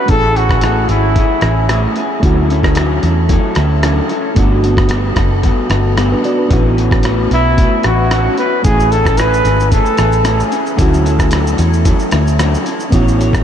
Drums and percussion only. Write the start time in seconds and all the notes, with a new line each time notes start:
0.08 kick, closed hi-hat
0.36 closed hi-hat
0.49 kick, cross-stick
0.61 cross-stick, closed hi-hat
0.89 closed hi-hat
1.16 kick, closed hi-hat
1.41 cross-stick, closed hi-hat
1.69 cross-stick, closed hi-hat
1.96 closed hi-hat
2.23 kick, closed hi-hat
2.50 closed hi-hat
2.63 kick, cross-stick
2.75 cross-stick, closed hi-hat
3.03 closed hi-hat
3.29 kick, closed hi-hat
3.55 cross-stick, closed hi-hat
3.83 cross-stick, closed hi-hat
4.09 closed hi-hat
4.36 kick, closed hi-hat
4.64 closed hi-hat
4.77 kick, cross-stick
4.89 cross-stick, closed hi-hat
5.16 kick, cross-stick, closed hi-hat
5.43 kick, closed hi-hat
5.70 cross-stick, closed hi-hat
5.97 cross-stick, closed hi-hat
6.24 closed hi-hat
6.51 kick, closed hi-hat
6.78 closed hi-hat
6.91 kick, cross-stick
7.03 cross-stick, closed hi-hat
7.31 closed hi-hat
7.58 kick, closed hi-hat
7.83 cross-stick, closed hi-hat
8.11 cross-stick, closed hi-hat
8.38 closed hi-hat
8.64 kick, closed hi-hat, shaker
8.80 shaker
8.92 closed hi-hat, shaker
9.05 kick, cross-stick, shaker
9.17 cross-stick, closed hi-hat, shaker
9.34 shaker
9.45 closed hi-hat, shaker
9.60 shaker
9.72 kick, closed hi-hat, shaker
9.86 shaker
9.97 cross-stick, closed hi-hat, shaker
10.12 shaker
10.25 cross-stick, closed hi-hat, shaker
10.40 shaker
10.52 closed hi-hat, shaker
10.66 shaker
10.79 kick, closed hi-hat, shaker
10.94 shaker
11.06 closed hi-hat, shaker
11.19 kick, cross-stick, shaker
11.31 cross-stick, closed hi-hat, shaker
11.47 shaker
11.58 closed hi-hat, shaker
11.73 shaker
11.85 kick, closed hi-hat, shaker
11.99 shaker
12.11 cross-stick, closed hi-hat, shaker
12.27 shaker
12.39 cross-stick, closed hi-hat, shaker
12.54 shaker
12.66 closed hi-hat, shaker
12.80 shaker
12.92 kick, closed hi-hat, shaker
13.08 shaker
13.21 closed hi-hat, shaker
13.33 kick, cross-stick, shaker